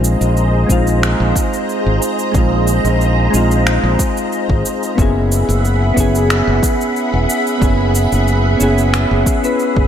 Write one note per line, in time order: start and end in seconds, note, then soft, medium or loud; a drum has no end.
0.00 0.14 A#1 medium
0.00 0.64 G#3 medium
0.00 0.65 C4 medium
0.00 0.66 D#4 medium
0.00 0.67 F4 medium
0.00 4.94 G#4 medium
0.00 4.94 C5 medium
0.00 4.94 D#5 medium
0.00 4.95 A#5 medium
0.04 cabasa medium
0.21 0.64 A#1 medium
0.21 cabasa soft
0.37 cabasa soft
0.67 1.13 A#1 medium
0.67 2.29 G#3 medium
0.67 2.30 C4 medium
0.67 2.31 D#4 medium
0.67 kick medium
0.67 cabasa medium
0.72 2.32 F4 medium
0.87 cabasa soft
1.03 finger snap medium
1.03 cabasa soft
1.20 1.32 A#1 medium
1.36 kick medium
1.36 cabasa medium
1.53 cabasa soft
1.69 cabasa soft
1.86 1.98 G#1 medium
2.02 cabasa medium
2.19 cabasa soft
2.32 2.79 A#1 medium
2.32 3.28 G#3 medium
2.32 3.29 C4 medium
2.32 kick loud
2.32 cabasa soft
2.36 3.30 D#4 medium
2.36 3.31 F4 medium
2.67 cabasa medium
2.84 3.27 A#1 medium
2.84 cabasa soft
3.01 cabasa soft
3.31 3.77 A#1 medium
3.31 4.93 G#3 medium
3.31 4.94 C4 medium
3.31 cabasa medium
3.35 4.95 D#4 medium
3.35 4.96 F4 medium
3.51 cabasa soft
3.67 finger snap medium
3.67 cabasa soft
3.83 3.96 A#1 medium
3.99 kick loud
3.99 cabasa medium
4.17 cabasa soft
4.32 cabasa soft
4.49 4.62 G#1 medium
4.49 kick loud
4.65 cabasa medium
4.83 cabasa soft
4.95 5.42 F#1 medium
4.95 5.92 B3 medium
4.95 5.93 C#4 medium
4.95 9.88 G#4 medium
4.95 9.88 E5 medium
4.95 9.88 F#5 medium
4.95 9.88 B5 medium
4.95 kick loud
4.95 cabasa soft
5.00 5.94 E4 medium
5.00 5.95 G#4 medium
5.32 cabasa medium
5.49 5.91 F#1 medium
5.49 cabasa soft
5.65 cabasa soft
5.94 6.41 F#1 medium
5.94 7.57 B3 medium
5.94 7.57 C#4 medium
5.94 7.58 E4 medium
5.94 kick medium
5.94 cabasa medium
6.00 7.60 G#4 loud
6.15 cabasa soft
6.30 finger snap medium
6.30 cabasa soft
6.47 6.59 F#1 medium
6.63 kick loud
6.63 cabasa medium
6.81 cabasa soft
6.96 cabasa soft
7.14 7.25 E1 medium
7.30 cabasa medium
7.47 cabasa soft
7.58 8.06 F#1 medium
7.58 8.55 B3 medium
7.58 8.56 C#4 medium
7.58 kick loud
7.62 8.57 E4 medium
7.62 8.58 G#4 medium
7.62 cabasa soft
7.95 cabasa medium
8.12 8.55 F#1 medium
8.12 cabasa soft
8.28 cabasa soft
8.57 9.05 F#1 medium
8.57 9.39 B3 medium
8.57 9.40 C#4 medium
8.57 9.40 E4 medium
8.57 cabasa medium
8.63 9.42 G#4 loud
8.78 cabasa soft
8.94 finger snap medium
8.94 cabasa soft
9.11 9.23 F#1 medium
9.26 kick loud
9.26 cabasa medium
9.42 9.88 B3 medium
9.42 9.88 C#4 medium
9.42 9.88 E4 medium
9.42 9.88 B4 medium
9.42 cabasa soft
9.59 cabasa soft
9.76 9.88 F#1 medium
9.76 kick loud